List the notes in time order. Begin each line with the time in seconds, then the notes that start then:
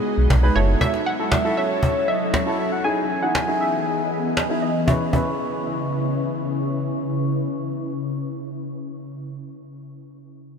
Already playing: G#3 B3 D#4 G#4
0.18 B1
0.30 B1, cajon bass, cajon slap
0.43 D#4 G#4 B4
0.55 F#1 F#3 C#4 E4 F#4 A4 C#5
0.81 E5, cajon bass
0.94 cajon slap
1.06 F#5
1.19 E4 F#4 A4
1.32 E5, cajon bass, cajon slap
1.44 E4 F#4 A4
1.57 C#5 E5
1.83 cajon bass
2.08 D#5 E5
2.34 C#5, cajon bass, cajon slap
2.46 E4 F#4 A4
2.59 E5
2.72 F#5
2.84 E3 B3 D#4 E4 G#4 D#5 G#5
3.22 D#4 E4 G#4 F#5
3.35 cajon slap
3.48 D#4 E4 G#4
3.61 E5
4.37 cajon slap
4.49 D#4 E4 G#4
4.62 D#5
4.86 C#3 C#4 E4 B4 E5 C#6, cajon bass, cajon slap
4.90 B4
5.11 C#4 E4 B4 E5 C#6, cajon bass